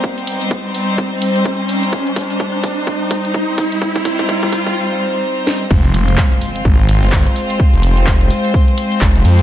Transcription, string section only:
X:1
M:4/4
L:1/8
Q:"Swing 16ths" 1/4=127
K:Fm
V:1 name="String section"
[G,CEc]8- | [G,CEc]8- | [G,CEc]8 | [A,CFc]8- |
[A,CFc]8 |]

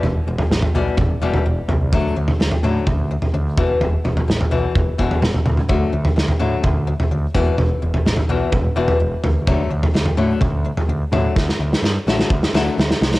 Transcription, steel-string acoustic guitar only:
X:1
M:4/4
L:1/8
Q:1/4=127
K:Dmix
V:1 name="Steel-string acoustic guitar" clef=bass
[E,,B,,] [E,,B,,] [E,,B,,] [E,,B,,G,] B,, [E,,B,,G,] [E,,B,,] [E,,B,,] | [D,F,A,] [D,F,] [D,F,] [D,F,A,] F, [D,F,] [D,F,] [E,,B,,E,] | [E,,B,,] [E,,B,,] [E,,B,,] [E,,B,,E,] [E,,B,,] [E,,B,,E,] [E,,B,,] [E,,B,,] | [D,F,A,] [D,F,] [D,F,] [D,F,A,] [D,F,] [D,F,] [D,F,] [E,,B,,E,] |
[E,,B,,] [E,,B,,] [E,,B,,] [E,,B,,E,] [E,,B,,] [E,,B,,E,] [E,,B,,] [E,,B,,] | [D,F,A,] [D,F,] [D,F,] [D,F,A,] [D,F,] [D,F,] [D,F,] [D,F,A,] | [D,F,] [D,F,] [D,F,] [D,F,A,] [D,F,] [D,F,A,] [D,F,] [D,F,] |]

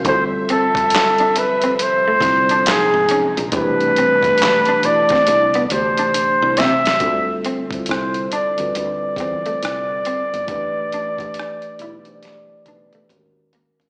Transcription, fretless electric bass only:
X:1
M:4/4
L:1/16
Q:"Swing 16ths" 1/4=69
K:Ddor
V:1 name="Fretless electric bass" clef=bass
D,,6- D,, z3 C,,2 _B,,, _A,,, z B,,, | C,,6- C,, z C,,2 D,,2 z C,, C,2 | D,,4 C,,2 z D,, D,,2 E,, z C,,2 z G,,, | A,,,2 A,,,4 B,,,4 B,,,2 _E,,4 |]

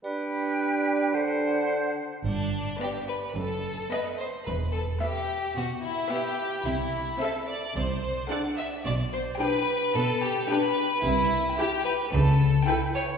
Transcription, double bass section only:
X:1
M:4/4
L:1/8
Q:1/4=109
K:G
V:1 name="Double bass section" clef=bass
z8 | G,,,2 z2 F,,,2 z2 | E,,,2 z6 | C,,2 z2 C,,2 z2 |
B,,,2 z6 | C,,2 z2 ^C,,2 z2 |]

